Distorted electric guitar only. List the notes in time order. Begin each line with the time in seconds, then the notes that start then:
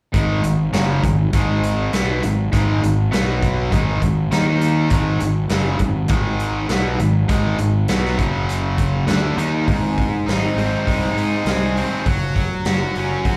0.14 G#2 D#3 G#3
0.44 G#2 D#3
0.73 F#2 C#3 F#3
1.04 G#2 D#3
1.33 G#2 D#3 G#3
1.93 B2 F#3 B3
2.24 G#2 D#3
2.52 G#2 D#3 G#3
2.83 G#2 D#3
3.12 B2 F#3 B3
3.71 G#2 D#3 G#3
4.01 G#2 D#3
4.31 D#3 A#3 D#4
4.90 G#2 D#3 G#3
5.21 G#2 D#3
5.49 F#2 C#3 F#3
5.80 G#2 D#3
6.08 G#2 D#3 G#3
6.68 B2 F#3 B3
7.00 G#2 D#3
7.28 G#2 D#3 G#3
7.59 G#2 D#3
7.89 B2 F#3 B3
8.18 F#2 C#3 F#3
9.07 D3 A3 D4
9.36 D#3 A#3 D#4
9.67 G#2
10.26 D#4
10.57 C4
10.87 G#3
11.17 D#4
11.47 G#4
11.77 C4
12.07 F#3
12.66 F#4
12.97 C#4
13.25 F#3